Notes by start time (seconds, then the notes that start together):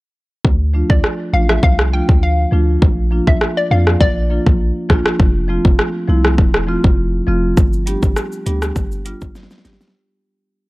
0.45 D2, kick
0.74 F3 A3 D4 F4
0.90 D2 D5, kick
1.04 cross-stick
1.33 A1 F3 A3 D4 F4 F5
1.49 E5, cross-stick
1.63 C2 F5, kick
1.79 cross-stick
1.92 F3 A3 D4 F4 G5
2.09 D2, kick
2.23 F5
2.51 D2 F3 A3 D4 F4
2.82 A#1, kick
3.11 F3 A#3 D4 F4
3.27 A#1 E5, kick
3.41 cross-stick
3.57 D5
3.70 F2 F3 A#3 D4 F4 F5
3.87 cross-stick
4.01 A#1 D5, kick
4.30 F3 A#3 D4 F4
4.46 A#1, kick
4.89 A#1 F3 A#3 D4 F4, kick, cross-stick
5.06 cross-stick
5.20 F1, kick
5.48 F3 A3 C4 F4
5.65 F1, kick
5.79 cross-stick
6.08 C2 F3 A3 C4 E4
6.25 cross-stick
6.38 E1, kick
6.54 cross-stick
6.67 F3 A3 C4 F4
6.84 F1, kick
7.27 F1 F3 A3 C4 F4
7.57 G1, kick, shaker
7.73 shaker
7.86 G3 B3 D4 G4, closed hi-hat, shaker
8.03 G1, kick, shaker
8.16 cross-stick, shaker
8.32 shaker
8.45 D2 G3 B3 D4 G4, closed hi-hat, shaker
8.62 cross-stick, shaker
8.76 G1, kick, shaker
8.92 shaker
9.05 G3 B3 D4 F4, closed hi-hat, shaker
9.21 G1, kick, shaker
9.35 snare, shaker
9.43 snare
9.51 snare, shaker
9.58 snare
9.64 G1 G3 B3 D4 G4, snare, closed hi-hat, shaker
9.73 snare
9.81 snare, shaker
9.88 snare